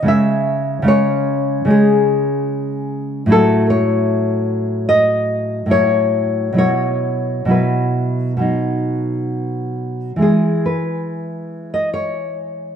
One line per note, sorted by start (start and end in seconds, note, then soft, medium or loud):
0.03 0.81 C#3 medium
0.03 0.83 G#3 medium
0.03 0.85 C#4 medium
0.08 0.85 E5 loud
0.82 1.64 C#3 medium
0.82 1.65 G#3 medium
0.87 1.67 C#4 medium
0.87 1.67 C#5 loud
1.65 3.24 C#3 medium
1.65 3.25 G#3 medium
1.65 3.26 C#4 medium
1.70 2.88 G#4 medium
3.26 5.65 A2 medium
3.26 5.67 F#3 medium
3.30 5.68 E4 medium
3.30 3.69 A4 loud
3.70 4.85 C#5 medium
4.89 5.69 D#5 loud
5.66 6.53 A2 medium
5.66 6.53 F#3 medium
5.70 6.55 E4 medium
5.70 6.55 C#5 loud
6.53 7.44 B2 medium
6.53 7.46 F#3 medium
6.53 7.47 E4 medium
6.58 7.47 C#5 loud
7.45 8.36 B2 medium
7.45 8.36 F#3 medium
7.45 8.39 E4 medium
7.51 9.75 B4 medium
8.37 10.16 B2 medium
8.37 10.17 F#3 soft
8.41 10.18 D#4 soft
10.16 12.76 E3 medium
10.16 12.76 G#3 medium
10.21 12.76 E4 soft
10.21 10.64 G#4 medium
10.66 11.69 B4 medium
11.74 11.93 D#5 medium
11.94 12.76 C#5 medium